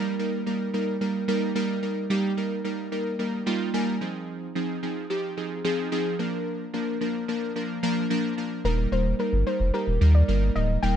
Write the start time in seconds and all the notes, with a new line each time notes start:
Already playing: G3 A#3 D#4 A#4
0.19 G3 A#3 D#4 A#4
0.46 G3 A#3 D#4 A#4
0.74 G3 A#3 D#4 A#4
1.01 G3 A#3 D#4 A#4
1.28 G3 A#3 D#4 A#4
1.55 G3 A#3 D#4 A#4
1.82 G3 A#3 D#4 A#4
2.10 G3 A#3 D#4 G4
2.37 G3 A#3 D#4 A#4
2.64 G3 A#3 D#4 A#4
2.92 G3 A#3 D#4 A#4
3.19 G3 A#3 D#4 A#4
3.46 G3 A#3 D#4 F4 G5
3.74 G3 A#3 D#4 A#4 G#5
4.01 F3 C4 D#4 G#4
4.55 F3 C4 D#4 G#4
4.83 F3 C4 D#4 G#4
5.10 F3 C4 D#4 G4
5.37 F3 C4 D#4 G#4
5.64 F3 C4 D#4 G#4
5.92 F3 C4 D#4 G#4
6.19 F3 A#3 D4 A#4
6.74 F3 A#3 D4 A#4
7.01 F3 A#3 D4 A#4
7.28 F3 A#3 D4 A#4
7.56 F3 A#3 D4 A#4
7.83 F3 A#3 D4 A#4
8.10 F3 A#3 D4 A#4
8.37 F3 A#3 D4 A#4
8.65 D#1 G3 A#3 D#4 A#4
8.92 D#1 G3 A#3 D#4 A#4 C5
9.19 G3 A#3 D#4 A#4
9.33 G1
9.46 G3 A#3 D#4 A#4 C5
9.60 F1
9.74 G3 A#3 D#4 G4 A#4
9.87 D#1
10.01 D#2 G3 A#3 D#4 A#4
10.15 D5
10.28 G1 G3 A#3 D#4 A#4
10.56 D1 G3 A#3 D#4 A#4 D#5
10.83 D#1 G3 A#3 D#4 A#4 G5